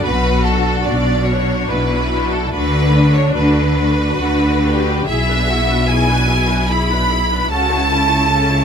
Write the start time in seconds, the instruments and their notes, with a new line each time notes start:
0.04 double bass section B1, cello section B2, violin section F#4 B4
0.45 viola section D4 F#4, violin section A4
0.85 double bass section B1, cello section B2, violin section D4 D5
1.26 viola section D4 F#4, violin section C#5
1.70 double bass section B1, cello section B2, violin section E4 B4
2.11 viola section D4 F#4
2.32 violin section A4
2.52 double bass section D2, cello section D3, viola section D4 F#4, violin section D4 B4
2.93 viola section D4 F#4
3.15 violin section C#5
3.34 double bass section D2, cello section D3, violin section B4
3.75 viola section D4 F#4
4.16 double bass section D2, cello section D3, violin section F#4
4.62 viola section D4 F#4, violin section G4
5.07 double bass section B1, cello section B2, viola section E4 G#4, violin section G#4 E5
5.29 viola section D4 B4
5.49 viola section E4 G#4, violin section F#4
5.69 viola section D4 B4
5.88 viola section E4 G#4, violin section E4 G#5
6.08 viola section D4 B4
6.28 viola section E4 G#4
6.49 viola section D4 B4
6.69 viola section E4 G#4, violin section B5
6.90 viola section D4 B4
7.10 viola section E4 G#4
7.30 viola section D4 B4
7.51 double bass section C#2, cello section C#3, viola section C#4 A4, violin section F#4 A5
7.71 viola section E4 C#5
7.90 viola section C#4 A4, violin section E4
8.10 viola section E4 C#5
8.29 viola section C#4 A4, violin section A4
8.49 viola section E4 C#5